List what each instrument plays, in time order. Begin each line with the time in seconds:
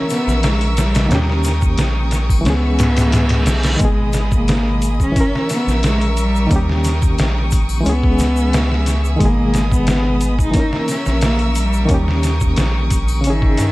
Already playing: reed electric piano E3 C#4 A#4, violin section A#4 E5 C#6 E6
0.10 cello B3, snare, closed hi-hat, triangle, shaker
0.27 analog synth bass A#1, snare, shaker
0.43 cello G#3, snare, closed hi-hat, shaker
0.61 closed hi-hat
0.77 cello G3, snare, closed hi-hat, shaker
0.95 snare, closed hi-hat, shaker
1.06 reed electric piano D#3 A#3
1.10 analog synth bass D#2, reed electric piano C#4, violin section G5 C#6 D#6, snare, closed hi-hat, shaker
1.15 reed electric piano G4
1.30 snare
1.44 snare, closed hi-hat, shaker
1.62 kick, shaker
1.77 analog synth bass A#1, snare, closed hi-hat, shaker
2.11 snare, closed hi-hat, shaker
2.29 kick, triangle, shaker
2.41 reed electric piano E3 G#3, violin section G#4 E5 E6
2.45 analog synth bass C#2, cello B3, reed electric piano C#4, snare, closed hi-hat, reverse cymbal, shaker
2.50 reed electric piano G#4
2.79 snare, closed hi-hat, shaker
2.97 snare, closed hi-hat, shaker
3.12 snare, closed hi-hat, shaker
3.29 snare, closed hi-hat
3.46 analog synth bass B1, snare, closed hi-hat, shaker
3.63 snare, closed hi-hat, shaker
3.76 reed electric piano D#3 G#3, violin section D#5 B5 D#6, closed hi-hat
3.80 analog synth bass G#1, reed electric piano B2, cello G#3, kick, shaker
3.85 reed electric piano G#4
4.13 snare, closed hi-hat, shaker
4.32 cello A#3, kick, shaker
4.48 snare, closed hi-hat, shaker
4.82 closed hi-hat, shaker
5.00 cello C#4, kick, shaker
5.12 reed electric piano E3, violin section A#4 E5 C#6 E6
5.16 reed electric piano C#4, kick, closed hi-hat, shaker
5.21 reed electric piano A#4
5.35 snare
5.49 cello B3, snare, closed hi-hat, triangle, shaker
5.67 analog synth bass A#1, snare, shaker
5.83 cello G#3, snare, closed hi-hat, shaker
6.01 closed hi-hat
6.17 cello G3, closed hi-hat, shaker
6.36 shaker
6.47 reed electric piano D#3 A#3, violin section G5 D#6
6.51 analog synth bass D#2, reed electric piano C#4, kick, closed hi-hat, shaker
6.56 reed electric piano G4
6.70 snare
6.84 snare, closed hi-hat, shaker
7.02 kick, shaker
7.18 analog synth bass A#1, snare, closed hi-hat, shaker
7.51 kick, closed hi-hat, shaker
7.69 triangle, shaker
7.80 reed electric piano E3 G#3
7.85 analog synth bass C#2, cello B3, reed electric piano C#4, violin section G#4 E5 E6, closed hi-hat, shaker
7.89 reed electric piano G#4
8.03 kick
8.19 snare, closed hi-hat, shaker
8.36 shaker
8.53 snare, closed hi-hat, shaker
8.72 snare
8.86 snare, closed hi-hat, shaker
9.05 shaker
9.16 analog synth bass G#1, reed electric piano D#3 G#3, violin section D#6
9.20 reed electric piano B2, cello A#3, violin section D#5 B5, kick, closed hi-hat, shaker
9.25 reed electric piano G#4
9.54 snare, closed hi-hat, shaker
9.72 cello B3, kick, shaker
9.87 snare, closed hi-hat, shaker
10.21 closed hi-hat, shaker
10.39 cello D#4, kick, shaker
10.51 reed electric piano E3 A#3, violin section A#4 E5 C#6 E6, kick, closed hi-hat
10.55 reed electric piano C#4, shaker
10.59 reed electric piano A#4
10.73 snare
10.88 cello C#4, snare, closed hi-hat, triangle, shaker
11.06 analog synth bass A#1, snare, shaker
11.21 cello A#3, snare, closed hi-hat, shaker
11.39 closed hi-hat
11.55 cello G3, closed hi-hat, shaker
11.73 shaker
11.85 reed electric piano D#3 A#3, violin section G5, closed hi-hat
11.89 analog synth bass D#2, reed electric piano C#4, violin section D#6, kick, shaker
11.94 reed electric piano G4
12.08 snare
12.23 snare, closed hi-hat, shaker
12.41 kick, shaker
12.56 analog synth bass A#1, snare, closed hi-hat, shaker
12.90 kick, closed hi-hat, shaker
13.08 triangle, shaker
13.21 reed electric piano C#3, violin section G#4 E5 E6, closed hi-hat, shaker
13.25 analog synth bass G#1, cello D#3, reed electric piano C#4
13.30 reed electric piano G#4
13.42 kick
13.57 analog synth bass G2, snare, closed hi-hat, shaker